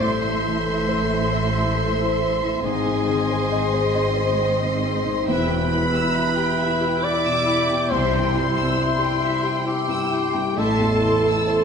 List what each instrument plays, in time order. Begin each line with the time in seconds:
Already playing: harp E4 C5, violin section C6
0.00 double bass section A1, felt piano A2, harp A2, cello section A2, viola section A3 E4, duduk C5, violin section E5 C6
0.21 felt piano E3
0.44 harp E3, felt piano E4
0.66 felt piano A4
0.89 harp E4, felt piano C5
1.10 felt piano E5
1.33 harp A4, felt piano C5
1.54 felt piano E5
1.76 felt piano A4, harp C5
2.00 felt piano E3
2.21 felt piano E4, harp A4
2.42 felt piano E3
2.63 double bass section G#1, felt piano G#2, harp G#2, cello section G#2, viola section C4 G#4, duduk G#4, violin section D#5 G#5 C6
2.86 felt piano D#3
3.07 harp D#3, felt piano C4
3.30 felt piano C5
3.51 harp C4, felt piano D#5
3.74 felt piano C5
3.95 harp C5, felt piano D#5
4.16 felt piano C5
4.39 felt piano C4, harp D#5
4.62 felt piano D#3
4.83 felt piano C4, harp C5
5.05 felt piano D#3
5.27 double bass section E1, felt piano E2, cello section E2, harp E3, viola section E4 G4, duduk B4, violin section E5 G5 B5
5.48 felt piano B2, violin section G5
5.71 harp B3, felt piano E4, violin section B5
5.93 felt piano G4, violin section E6
6.15 harp E4, felt piano E5, violin section B5
6.36 felt piano G4, violin section G5
6.58 harp G4, felt piano E5, violin section E5
6.81 felt piano G4, violin section G5
7.02 felt piano E4, duduk D5, harp E5, violin section B5 D6
7.25 felt piano B2, violin section E6
7.47 felt piano E4, harp G4, violin section B5
7.69 felt piano B2, violin section G5
7.91 felt piano C2, double bass section C2, harp C3, cello section C3, duduk C5, violin section E5 C6
8.12 felt piano G2, violin section G5
8.34 harp G3, felt piano E4, violin section C6
8.55 felt piano G4, violin section E6
8.77 harp E4, felt piano E5, violin section C6
8.99 felt piano G4, violin section G5
9.20 harp G4, felt piano E5, violin section E5
9.42 felt piano G4, violin section G5
9.65 felt piano E4, duduk G4, harp E5, violin section G5 C6
9.88 felt piano G2, violin section E6
10.11 felt piano E4, harp G4, violin section C6
10.34 felt piano G2, violin section G5
10.56 felt piano A1, double bass section A1, cello section A2, harp A2, viola section E4 A4, duduk A4, violin section E5 A5 C6
10.79 felt piano E2, violin section A5
11.01 harp E3, felt piano E4, violin section C6
11.25 felt piano A4, violin section E6
11.47 harp E4, felt piano C5, violin section C6